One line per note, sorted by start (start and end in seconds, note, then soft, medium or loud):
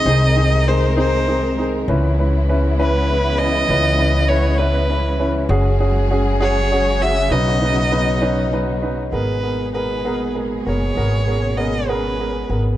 0.00 1.83 C3 medium
0.00 1.83 D#3 medium
0.00 7.25 G#3 medium
0.00 1.84 D#4 medium
0.00 0.70 D#5 loud
0.05 1.83 C2 loud
0.05 0.32 C4 medium
0.05 0.32 D#4 medium
0.05 0.32 G#4 loud
0.05 1.85 A#4 loud
0.36 0.62 C4 medium
0.36 0.62 D#4 medium
0.36 0.62 G#4 medium
0.67 0.93 C4 medium
0.67 0.93 D#4 medium
0.67 0.93 G#4 medium
0.67 0.97 C5 loud
0.96 1.22 C4 medium
0.96 1.23 D#4 medium
0.96 1.23 G#4 loud
0.96 1.62 C5 loud
1.27 1.53 C4 medium
1.27 1.53 D#4 medium
1.27 1.53 G#4 medium
1.58 1.84 C4 medium
1.58 1.84 D#4 medium
1.58 1.84 G#4 medium
1.88 3.65 C#2 loud
1.88 5.46 C#3 medium
1.88 5.46 E3 medium
1.88 5.46 B3 medium
1.88 2.14 C#4 medium
1.88 5.46 E4 medium
1.88 2.14 E4 medium
1.88 2.14 B4 medium
2.19 2.44 C#4 medium
2.19 2.44 E4 medium
2.19 2.44 B4 medium
2.49 2.74 C#4 medium
2.49 2.75 E4 medium
2.49 2.75 B4 medium
2.79 3.04 C#4 medium
2.79 3.04 E4 medium
2.79 3.05 B4 loud
2.79 3.40 B4 loud
3.09 3.34 C#4 medium
3.09 3.35 E4 medium
3.09 3.35 B4 medium
3.39 3.65 C#4 medium
3.39 3.65 E4 medium
3.39 3.65 B4 medium
3.39 4.30 D#5 loud
3.68 5.45 C#2 loud
3.68 3.95 C#4 medium
3.68 3.95 E4 medium
3.68 3.95 B4 medium
3.98 4.24 C#4 medium
3.98 4.24 E4 medium
3.98 4.24 B4 medium
4.29 4.55 C#4 medium
4.29 4.55 E4 medium
4.29 4.55 B4 medium
4.29 4.60 C#5 loud
4.58 4.85 C#4 loud
4.58 4.85 E4 medium
4.58 5.26 B4 loud
4.58 4.85 B4 loud
4.89 5.15 C#4 medium
4.89 5.15 E4 medium
4.89 5.15 B4 medium
5.19 5.45 C#4 medium
5.19 5.45 E4 medium
5.19 5.45 B4 medium
5.49 7.26 F#1 loud
5.49 9.09 C#3 medium
5.49 9.09 F#3 medium
5.49 5.75 C#4 medium
5.49 9.09 F#4 medium
5.49 5.75 F#4 medium
5.49 7.28 G#4 loud
5.49 5.75 G#4 loud
5.80 6.05 C#4 medium
5.80 6.06 F#4 medium
5.80 6.06 G#4 medium
6.11 6.36 C#4 medium
6.11 6.36 F#4 medium
6.11 6.36 G#4 loud
6.40 6.66 C#4 loud
6.40 6.66 F#4 medium
6.40 6.66 G#4 loud
6.40 7.03 C#5 loud
6.72 6.97 C#4 medium
6.72 6.97 F#4 medium
6.72 6.97 G#4 medium
7.02 7.27 C#4 medium
7.02 7.27 F#4 medium
7.02 7.27 G#4 medium
7.02 7.33 E5 loud
7.30 9.09 B1 loud
7.30 9.11 B3 medium
7.30 7.57 C#4 loud
7.30 9.11 D#4 medium
7.30 7.56 D#4 medium
7.30 7.57 B4 loud
7.30 8.52 D#5 loud
7.61 7.87 C#4 medium
7.61 7.87 D#4 medium
7.61 7.87 B4 medium
7.91 8.17 C#4 medium
7.91 8.17 D#4 medium
7.91 8.17 B4 loud
8.21 8.47 C#4 loud
8.21 8.47 D#4 medium
8.21 8.47 B4 loud
8.52 8.78 C#4 medium
8.52 8.78 D#4 medium
8.52 8.78 B4 medium
8.82 9.08 C#4 medium
8.82 9.09 D#4 medium
8.82 9.09 B4 medium
9.12 10.62 G#1 medium
9.12 12.77 A#2 medium
9.12 12.77 B2 medium
9.12 12.77 G#3 medium
9.12 9.39 B3 medium
9.12 10.95 D#4 medium
9.12 12.77 G#4 medium
9.12 9.39 G#4 medium
9.12 9.39 A#4 medium
9.12 9.71 B4 medium
9.43 9.70 B3 medium
9.43 9.70 G#4 medium
9.43 9.70 A#4 medium
9.74 10.01 B3 medium
9.74 10.01 G#4 medium
9.74 10.01 A#4 medium
9.74 10.32 B4 medium
10.05 10.31 B3 medium
10.05 10.31 G#4 medium
10.05 10.32 A#4 medium
10.35 10.62 B3 medium
10.35 10.62 G#4 medium
10.35 10.62 A#4 medium
10.66 10.95 F#1 medium
10.66 10.93 B3 medium
10.66 10.93 G#4 medium
10.66 10.93 A#4 medium
10.66 11.59 C#5 medium
10.97 12.46 G#1 medium
10.97 11.23 B3 medium
10.97 12.77 C#4 medium
10.97 11.23 G#4 medium
10.97 11.24 A#4 medium
11.28 11.54 B3 medium
11.28 11.54 G#4 medium
11.28 11.54 A#4 medium
11.57 11.84 B3 medium
11.57 11.84 G#4 medium
11.57 11.84 A#4 medium
11.57 11.90 D#5 medium
11.88 12.15 B3 medium
11.88 12.16 G#4 medium
11.88 12.16 A#4 medium
11.88 12.58 B4 medium
12.19 12.46 B3 medium
12.19 12.46 G#4 medium
12.19 12.46 A#4 medium
12.50 12.77 G#1 medium
12.50 12.77 B3 medium
12.50 12.77 G#4 medium
12.50 12.77 A#4 medium